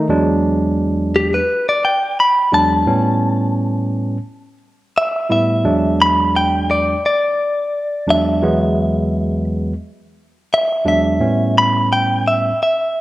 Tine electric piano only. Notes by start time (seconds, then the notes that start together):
0.09 E2 F#3 G#3 D4
2.52 E2 F#3 G#3 D4
2.87 A2 G3 B3 C#4
5.30 A2 G3 B3 E4
5.64 E2 F#3 G#3 D4
8.07 E2 F#3 G#3 D4
8.42 E2 F#3 G#3 B3
10.85 E2 F#3 G#3 D4
11.20 A2 G3 B3 C#4